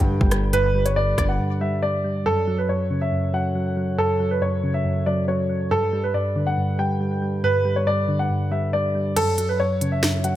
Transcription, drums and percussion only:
0, 0, Header, 1, 2, 480
1, 0, Start_track
1, 0, Tempo, 431655
1, 592, Time_signature, 4, 2, 24, 8
1, 11520, End_track
2, 0, Start_track
2, 0, Title_t, "Drums"
2, 233, Note_on_c, 9, 36, 100
2, 344, Note_off_c, 9, 36, 0
2, 349, Note_on_c, 9, 42, 82
2, 352, Note_on_c, 9, 37, 111
2, 460, Note_off_c, 9, 42, 0
2, 463, Note_off_c, 9, 37, 0
2, 591, Note_on_c, 9, 42, 80
2, 702, Note_off_c, 9, 42, 0
2, 952, Note_on_c, 9, 42, 79
2, 1063, Note_off_c, 9, 42, 0
2, 1311, Note_on_c, 9, 36, 93
2, 1312, Note_on_c, 9, 37, 103
2, 1313, Note_on_c, 9, 42, 82
2, 1422, Note_off_c, 9, 36, 0
2, 1424, Note_off_c, 9, 37, 0
2, 1425, Note_off_c, 9, 42, 0
2, 10191, Note_on_c, 9, 42, 79
2, 10192, Note_on_c, 9, 49, 90
2, 10303, Note_off_c, 9, 42, 0
2, 10303, Note_off_c, 9, 49, 0
2, 10431, Note_on_c, 9, 42, 79
2, 10542, Note_off_c, 9, 42, 0
2, 10913, Note_on_c, 9, 42, 83
2, 11024, Note_off_c, 9, 42, 0
2, 11151, Note_on_c, 9, 26, 97
2, 11151, Note_on_c, 9, 38, 120
2, 11152, Note_on_c, 9, 42, 70
2, 11262, Note_off_c, 9, 26, 0
2, 11262, Note_off_c, 9, 38, 0
2, 11263, Note_off_c, 9, 42, 0
2, 11388, Note_on_c, 9, 42, 81
2, 11499, Note_off_c, 9, 42, 0
2, 11520, End_track
0, 0, End_of_file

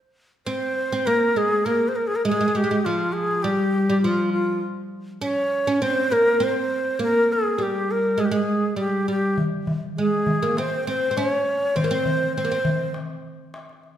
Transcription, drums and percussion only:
0, 0, Header, 1, 2, 480
1, 0, Start_track
1, 0, Tempo, 594059
1, 1820, Time_signature, 4, 2, 24, 8
1, 11291, End_track
2, 0, Start_track
2, 0, Title_t, "Darbuka"
2, 7576, Note_on_c, 9, 64, 63
2, 7656, Note_off_c, 9, 64, 0
2, 7816, Note_on_c, 9, 64, 66
2, 7896, Note_off_c, 9, 64, 0
2, 7940, Note_on_c, 9, 62, 20
2, 8021, Note_off_c, 9, 62, 0
2, 8295, Note_on_c, 9, 64, 67
2, 8376, Note_off_c, 9, 64, 0
2, 8417, Note_on_c, 9, 62, 23
2, 8498, Note_off_c, 9, 62, 0
2, 8541, Note_on_c, 9, 63, 55
2, 8622, Note_off_c, 9, 63, 0
2, 8662, Note_on_c, 9, 62, 20
2, 8743, Note_off_c, 9, 62, 0
2, 9023, Note_on_c, 9, 63, 54
2, 9104, Note_off_c, 9, 63, 0
2, 9145, Note_on_c, 9, 62, 21
2, 9226, Note_off_c, 9, 62, 0
2, 9263, Note_on_c, 9, 62, 21
2, 9344, Note_off_c, 9, 62, 0
2, 9503, Note_on_c, 9, 64, 64
2, 9584, Note_off_c, 9, 64, 0
2, 9742, Note_on_c, 9, 64, 69
2, 9822, Note_off_c, 9, 64, 0
2, 9864, Note_on_c, 9, 62, 24
2, 9945, Note_off_c, 9, 62, 0
2, 10220, Note_on_c, 9, 64, 77
2, 10301, Note_off_c, 9, 64, 0
2, 10342, Note_on_c, 9, 62, 24
2, 10423, Note_off_c, 9, 62, 0
2, 10458, Note_on_c, 9, 63, 53
2, 10539, Note_off_c, 9, 63, 0
2, 10583, Note_on_c, 9, 62, 20
2, 10664, Note_off_c, 9, 62, 0
2, 10940, Note_on_c, 9, 63, 52
2, 11020, Note_off_c, 9, 63, 0
2, 11064, Note_on_c, 9, 62, 22
2, 11144, Note_off_c, 9, 62, 0
2, 11178, Note_on_c, 9, 62, 20
2, 11259, Note_off_c, 9, 62, 0
2, 11291, End_track
0, 0, End_of_file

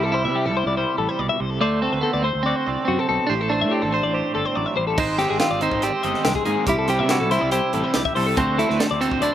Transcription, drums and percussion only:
0, 0, Header, 1, 2, 480
1, 0, Start_track
1, 0, Tempo, 422238
1, 1835, Time_signature, 4, 2, 24, 8
1, 10621, End_track
2, 0, Start_track
2, 0, Title_t, "Drums"
2, 5657, Note_on_c, 9, 49, 99
2, 5659, Note_on_c, 9, 36, 115
2, 5771, Note_off_c, 9, 49, 0
2, 5772, Note_off_c, 9, 36, 0
2, 5899, Note_on_c, 9, 38, 36
2, 5899, Note_on_c, 9, 42, 70
2, 6013, Note_off_c, 9, 38, 0
2, 6013, Note_off_c, 9, 42, 0
2, 6135, Note_on_c, 9, 38, 118
2, 6135, Note_on_c, 9, 42, 86
2, 6249, Note_off_c, 9, 38, 0
2, 6249, Note_off_c, 9, 42, 0
2, 6376, Note_on_c, 9, 42, 71
2, 6489, Note_off_c, 9, 42, 0
2, 6497, Note_on_c, 9, 36, 69
2, 6610, Note_off_c, 9, 36, 0
2, 6618, Note_on_c, 9, 42, 86
2, 6731, Note_off_c, 9, 42, 0
2, 6860, Note_on_c, 9, 42, 71
2, 6974, Note_off_c, 9, 42, 0
2, 6982, Note_on_c, 9, 38, 34
2, 7096, Note_off_c, 9, 38, 0
2, 7102, Note_on_c, 9, 38, 115
2, 7102, Note_on_c, 9, 42, 100
2, 7216, Note_off_c, 9, 38, 0
2, 7216, Note_off_c, 9, 42, 0
2, 7219, Note_on_c, 9, 36, 75
2, 7333, Note_off_c, 9, 36, 0
2, 7338, Note_on_c, 9, 42, 71
2, 7452, Note_off_c, 9, 42, 0
2, 7578, Note_on_c, 9, 42, 106
2, 7579, Note_on_c, 9, 36, 109
2, 7691, Note_off_c, 9, 42, 0
2, 7693, Note_off_c, 9, 36, 0
2, 7818, Note_on_c, 9, 38, 36
2, 7818, Note_on_c, 9, 42, 82
2, 7932, Note_off_c, 9, 38, 0
2, 7932, Note_off_c, 9, 42, 0
2, 8060, Note_on_c, 9, 38, 110
2, 8060, Note_on_c, 9, 42, 99
2, 8174, Note_off_c, 9, 38, 0
2, 8174, Note_off_c, 9, 42, 0
2, 8310, Note_on_c, 9, 38, 34
2, 8310, Note_on_c, 9, 42, 75
2, 8424, Note_off_c, 9, 38, 0
2, 8424, Note_off_c, 9, 42, 0
2, 8543, Note_on_c, 9, 42, 97
2, 8657, Note_off_c, 9, 42, 0
2, 8788, Note_on_c, 9, 42, 71
2, 8901, Note_off_c, 9, 42, 0
2, 9024, Note_on_c, 9, 38, 111
2, 9024, Note_on_c, 9, 42, 99
2, 9137, Note_off_c, 9, 38, 0
2, 9137, Note_off_c, 9, 42, 0
2, 9153, Note_on_c, 9, 36, 80
2, 9267, Note_off_c, 9, 36, 0
2, 9275, Note_on_c, 9, 46, 86
2, 9389, Note_off_c, 9, 46, 0
2, 9517, Note_on_c, 9, 36, 122
2, 9519, Note_on_c, 9, 42, 98
2, 9631, Note_off_c, 9, 36, 0
2, 9632, Note_off_c, 9, 42, 0
2, 9767, Note_on_c, 9, 42, 68
2, 9881, Note_off_c, 9, 42, 0
2, 9890, Note_on_c, 9, 38, 35
2, 10003, Note_off_c, 9, 38, 0
2, 10007, Note_on_c, 9, 38, 112
2, 10007, Note_on_c, 9, 42, 93
2, 10121, Note_off_c, 9, 38, 0
2, 10121, Note_off_c, 9, 42, 0
2, 10248, Note_on_c, 9, 42, 70
2, 10361, Note_on_c, 9, 36, 69
2, 10362, Note_off_c, 9, 42, 0
2, 10475, Note_off_c, 9, 36, 0
2, 10479, Note_on_c, 9, 42, 85
2, 10593, Note_off_c, 9, 42, 0
2, 10621, End_track
0, 0, End_of_file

